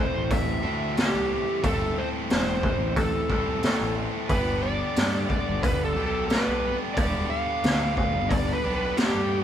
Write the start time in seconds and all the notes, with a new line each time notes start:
Already playing: A2 E3 A3 C4 E4 A4
0.00 C5
0.15 A1
0.31 E5, kick, open hi-hat
0.63 D2 A2 E3 A3 C4 E4 A4
0.96 A2 E3 A3 C4 E4 G4 A4, snare, open hi-hat
1.15 C2
1.63 G1 A2 E3 A3 C4 E4 A4, kick, open hi-hat
1.98 C5
2.30 E1 C5, snare, open hi-hat
2.63 kick
2.80 A1
2.96 A4, kick, open hi-hat
3.29 C2 A2 E3 A3 C4 E4 A4, kick
3.63 A2 E3 A3 C4 E4, snare, open hi-hat
3.67 A4
3.81 A1
4.29 G1 G2 D3 G3 B3 D4 G4 B4, kick, open hi-hat
4.62 D5
4.96 G2, snare, open hi-hat
5.30 D5, kick
5.48 G1
5.62 B4, kick, open hi-hat
5.85 A4
5.96 B1 G2 D3 G3 B3 D4 G4
6.06 A4
6.28 G2 D3 G3 B3 D4 B4, snare, open hi-hat
6.33 G4
6.48 B1
6.94 E1 G2 D3 G3 D5, kick, open hi-hat
6.98 B3 D4 G4
7.30 F5
7.64 D2, snare, open hi-hat
7.97 F5, kick
8.14 G1
8.29 D5, kick, open hi-hat
8.53 B4
8.64 B1 G2 D3 G3 B3 D4 G4
8.75 B4
8.96 G2 D3 G3 B3 D4 G4, snare, open hi-hat
9.00 G4
9.15 G2